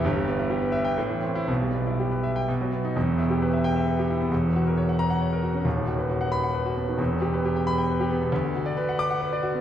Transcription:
\new Staff \with { instrumentName = "Grand piano" } { \time 3/4 \key e \minor \tempo 4 = 134 << { r4. r16 g''16 r8. e'16 | r4. r16 g''16 r8. dis'16 | r4. g''8 r4 | r4. ais''8 r4 |
r4. b''8 r4 | r4. b''8 r4 | r4. d'''8 r4 | } \\ { <g,, g,>16 g16 b16 e'16 g'16 b'16 e''8 a,16 e16 c'8 | <b,, b,>16 g16 b16 e'16 g'16 b'16 e''8 b,16 fis16 b8 | <e,, e,>16 b,16 e'16 g'16 b'16 e''8 e''16 b'16 g'16 e'16 b16 | <e,, e,>16 e16 fis'16 ais'16 cis''16 fis''8 fis''16 cis''16 ais'16 fis'16 cis'16 |
<dis,, dis,>16 dis16 fis'16 b'16 fis'16 fis''8 fis''16 b'16 fis'16 b16 dis16 | <e,, e,>16 b,16 g'16 b'16 g'16 g''8 g''16 b'16 g'16 b16 b,16 | d,16 d16 fis'16 d''16 b'16 fis''8 fis''16 b'16 d''16 fis'16 b16 | } >> }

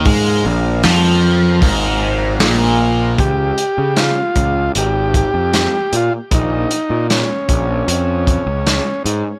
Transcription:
<<
  \new Staff \with { instrumentName = "Transistor combo organ" } { \time 4/4 \key bes \dorian \tempo 4 = 77 r1 | g'4 f'4 g'8 g'4 f'8 | ees'4 des'2~ des'8 r8 | }
  \new Staff \with { instrumentName = "Tonewheel organ" } { \time 4/4 \key bes \dorian <des f bes f' bes'>1 | r1 | r1 | }
  \new Staff \with { instrumentName = "Overdriven electric guitar" } { \clef bass \time 4/4 \key bes \dorian aes8 bes,8 f4 aes,4 bes,4 | r1 | r1 | }
  \new Staff \with { instrumentName = "Picked electric bass" } { \clef bass \time 4/4 \key bes \dorian aes,8 bes,,8 f,4 aes,,4 bes,,4 | des,8 r16 des8 r16 des,8 aes,,8. f,8 r16 bes,16 r16 | bes,,8 r16 bes,8 r16 bes,,8 f,8. des,8 r16 aes,16 r16 | }
  \new DrumStaff \with { instrumentName = "Drums" } \drummode { \time 4/4 <hho bd>4 <hho sn>4 <hho bd>4 <hho sn>4 | <hh bd>8 hh8 <hh sn>8 <hh bd>8 hh8 <hh bd>8 <hh sn>8 hh8 | <hh bd>8 hh8 <hh sn>8 <hh bd>8 hh8 <hh bd>8 <hh sn>8 hh8 | }
>>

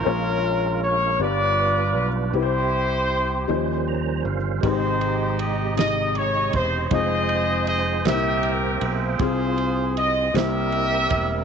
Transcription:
<<
  \new Staff \with { instrumentName = "Horn section" } { \time 6/8 \key f \minor \tempo 4. = 53 << { bes'4 des''8 d''4 r8 | c''2 r4 | c''4 ees''8 ees''8 des''8 c''8 | ees''4 ees''8 e''8 r8 c''8~ |
c''4 ees''8 e''4. | } \\ { <des' f'>4 r8 <f' b'>4. | <e' g'>2 r4 | <ees' g'>4. r4. | <aes' c''>4. <g' bes'>4 <f' aes'>8~ |
<f' aes'>4 r8 <g' bes'>4. | } >> }
  \new Staff \with { instrumentName = "Tonewheel organ" } { \time 6/8 \key f \minor << { r2. | r2 bes''8 f''8 | r2. | r2. |
r2. | } \\ { <aes bes des' f' bes'>4. <g b d' f' b'>4. | <c' e' g'>4. <ees f g des' c''>4. | <c aes ees' g' bes' ees''>2. | <aes c' ees' f' c''>4. <bes c' b' c'' e'' g''>4. |
<c' f' g' aes'>4. <g bes c' e' bes'>4. | } >> }
  \new Staff \with { instrumentName = "Grand piano" } { \time 6/8 \key f \minor <bes des' f' aes' des''>4 r8 <b d' f' g' d''>4 r8 | <e' g' b' c''>4 r8 <f g des' c'' ees''>4 r8 | <aes c' ees' g' b' c''>4 r8 <c aes ees' g' ees''>4 r8 | <aes c' ees' f' c''>4 r8 <bes c' ees' e' g' c''>4 r8 |
<c' f' aes'>4 r8 <bes c' e' g' c''>4 r8 | }
  \new Staff \with { instrumentName = "Grand piano" } { \clef bass \time 6/8 \key f \minor bes,4. g,4. | c4. ees4. | aes,4. r4. | r4. bes,4. |
c4. c4. | }
  \new Staff \with { instrumentName = "Fingered electric bass" } { \clef bass \time 6/8 \key f \minor bes,,4. g,,4 b,,8 | c,4. ees,4 g,,8 | aes,,2~ aes,,8 e,,8 | f,,4. c,4 b,,8 |
c,4. c,4 e,,8 | }
  \new DrumStaff \with { instrumentName = "Drums" } \drummode { \time 6/8 r4. r4. | r4. r4. | <bd rb>8 rb8 rb8 <rb sn>8 rb8 <bd rb>8 | <bd rb>8 rb8 rb8 <rb sn>8 rb8 rb8 |
<bd rb>8 rb8 rb8 <rb sn>8 rb8 <bd rb>8 | }
>>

